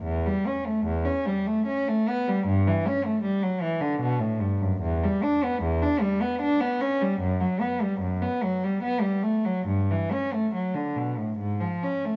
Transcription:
X:1
M:3/4
L:1/16
Q:1/4=75
K:Edor
V:1 name="Cello" clef=bass
E,, G, C A, E,, C G, A, C A, B, G, | G,, E, C A, G, F, E, D, B,, A,, G,, F,, | E,, G, D B, E,, D G, B, D B, C G, | F,, F, B, G, F,, B, F, G, B, G, A, F, |
G,, E, C A, F, D, B,, A,, ^G,, ^E, C A, |]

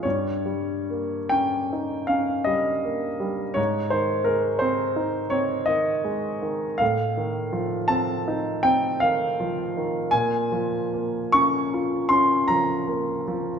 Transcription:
X:1
M:9/8
L:1/8
Q:3/8=54
K:Ab
V:1 name="Grand piano"
d3 g2 f e3 | d c B c2 d e3 | f3 =a2 g f3 | a3 d'2 c' b3 |]
V:2 name="Grand piano" clef=bass
G,, G, B, D E D G, B, G, | A,, E, A, C E C E, A, E, | =A,, E, F, C E C E, F, E, | B,, F, B, D F D F, B, F, |]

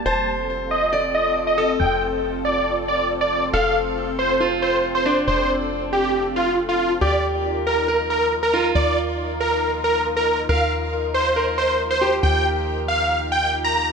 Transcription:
X:1
M:4/4
L:1/16
Q:1/4=138
K:Fmix
V:1 name="Supersaw synth"
a2 z4 e3 z e2 z e2 z | g2 z4 d3 z d2 z d2 z | f2 z4 c3 z c2 z c2 z | c2 z4 G3 z F2 z F2 z |
d2 z4 B3 z B2 z B2 z | d2 z4 B3 z B2 z B2 z | f2 z4 c3 z c2 z c2 z | g2 z4 f3 z g2 z b2 z |]
V:2 name="Grand piano"
c8 d6 A2- | A16 | A8 F6 D2- | D16 |
G8 B6 F2- | F16 | B8 B6 G2- | G16 |]
V:3 name="Analog synth pad"
[CFA]16- | [CFA]16- | [CFA]16- | [CFA]16 |
[EFB]16- | [EFB]16- | [EFB]16- | [EFB]16 |]
V:4 name="Analog synth bass" clef=bass
F,,,16 | F,,,16 | F,,,16 | F,,,16 |
E,,16 | E,,16 | E,,16 | E,,16 |]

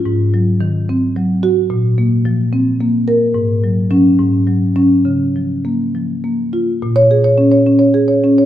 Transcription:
X:1
M:6/8
L:1/16
Q:3/8=71
K:Db
V:1 name="Marimba"
z8 z2 G2 | z8 z2 B2 | z4 D2 z4 D2 | z8 z2 F2 |
[K:Bbm] z d2 z8 z |]
V:2 name="Marimba" clef=bass
A,,2 G,2 E,2 C2 G,3 z | B,,2 B,2 F,2 C2 B,3 z | A,,2 G,2 G,2 A,,2 G,2 G,2 | D,2 F,2 B,2 F,2 B,3 z |
[K:Bbm] B,,2 A d D d D d A d D d |]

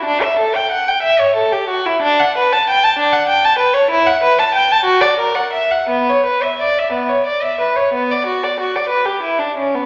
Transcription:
X:1
M:6/8
L:1/16
Q:3/8=61
K:Glyd
V:1 name="Violin"
D e A g f g e c A G F E | D f B a g a D f g a B c | [K:Bm] E f B a g a F d ^A f e f | B, c B e d e B, c d e B c |
B, d F d F d B G E D C B, |]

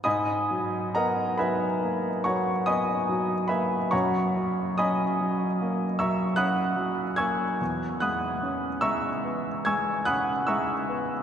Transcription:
X:1
M:9/8
L:1/8
Q:3/8=48
K:G#m
V:1 name="Grand piano"
[dgbd']2 [Adfa] [Begb]2 [cfac'] [dgbd']2 [Begb] | [cfac']2 [dgbd']3 [eac'e'] [fbd'f']2 [gc'e'g'] | z [fbd'f']2 [eac'e']2 [gc'e'g'] [fbd'f'] [eac'e']2 |]
V:2 name="Grand piano" clef=bass
G,, F, B, F, A, F, B, F, A, | F,, F, C F, A, F, C F, A, | E,, G, C G, B, G, C G, B, |]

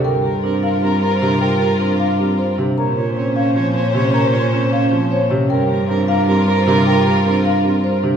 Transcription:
X:1
M:7/8
L:1/8
Q:1/4=154
K:Bblyd
V:1 name="Marimba"
g z2 f z c z | g z2 f z c z | b z2 f z _d z | b z2 f z _d z |
g z2 f z c z | g z2 f z c z |]
V:2 name="Soprano saxophone"
B B B B B B B | B B B B B B z | _d d d d d d d | _d d d d d d z |
B B B B B B B | B B B B B B z |]
V:3 name="Violin section"
[FB]6- [FB]- | [FB]6 z | [_Dc]6- [Dc]- | [_Dc]6 z |
[FB]6- [FB]- | [FB]6 z |]
V:4 name="Vibraphone"
B G D D C c D | B G D D C c D | B F _D D C c D | B F _D D C c D |
B G D D C c D | B G D D C c D |]
V:5 name="Grand piano" clef=bass
z2 C z G, z C, | z2 C z G, z C, | z2 C z F, z C, | z2 C z F, z C, |
z2 C z G, z C, | z2 C z G, z C, |]
V:6 name="Cello" clef=bass
G,,6- G,,- | G,,6- G,, | B,,6- B,,- | B,,6- B,, |
G,,6- G,,- | G,,6- G,, |]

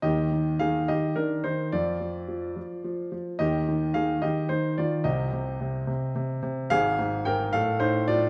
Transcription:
X:1
M:6/8
L:1/8
Q:3/8=72
K:Eb
V:1 name="Grand piano"
[Ge]2 [Af] [Ge] [DB] [Ec] | [Fd]4- [Fd] z | [Ge]2 [Af] [Ge] [Ec] [Fd] | [Ge]4- [Ge] z |
[Af]2 [Bg] [=Af] [Ec] [Fd] |]
V:2 name="Grand piano" clef=bass
[E,,E,] E, E, E, E, E, | [F,,F,] F, F, F, F, F, | [E,,E,] E, E, E, E, E, | [C,,C,] C, C, C, C, C, |
[A,,,A,,] A,, A,, =A,, A,, A,, |]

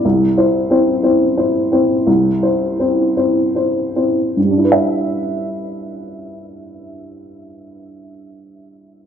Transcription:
X:1
M:6/8
L:1/8
Q:3/8=51
K:G
V:1 name="Upright piano"
C,, [Ec] [CEc] [CEc] [Ec] [CEc] | C,, [Ec] [CEc] [CEc] [Ec] [CEc] | [G,,G,DEBe]6- | [G,,G,DEBe]6 |]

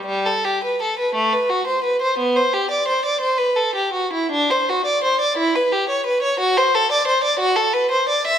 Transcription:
X:1
M:6/8
L:1/16
Q:3/8=58
K:G
V:1 name="Violin"
G, A G B A B A, B F c B c | B, c G d c d c B A G F E | D c F d c d E B G ^c B c | F c A d c d F A B c d e |]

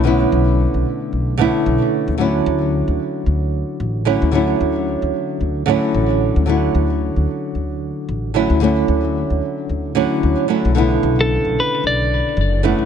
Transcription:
X:1
M:4/4
L:1/16
Q:"Swing 16ths" 1/4=112
K:D
V:1 name="Clean electric guitar"
z16 | z16 | z16 | z16 |
z16 | z3 A3 B2 d6 z2 |]
V:2 name="Nylon-string guitar"
[D,A,B,CE]8- [D,A,B,CE]2 [D,A,B,CE]6 | [D,F,A,CE]12- [D,F,A,CE]2 [D,F,A,CE]2 | [D,F,A,CE]8- [D,F,A,CE]2 [D,F,A,CE]6 | [D,F,A,CE]12- [D,F,A,CE]2 [D,F,A,CE]2 |
[D,F,A,CE]8- [D,F,A,CE]2 [D,F,A,CE]4 [D,F,A,CE]2 | [C,D,A,B,E]12- [C,D,A,B,E]2 [D,A,B,CE]2 |]
V:3 name="Upright bass" clef=bass
B,,,2 B,,,3 B,,, z2 B,,,3 z B,,, z2 D,,- | D,,2 D,,3 D,, z2 D,,3 z A,,,3 D,,- | D,,2 D,,3 D,, z2 D,,3 z A,,,3 D,,- | D,,2 D,,3 D,, z2 D,,3 z A,,,3 D,,- |
D,,2 D,,3 D,, z2 D,,3 z D,, z2 B,,,- | B,,,2 B,,,3 B,,, z2 B,,,3 z F,,,3 B,,, |]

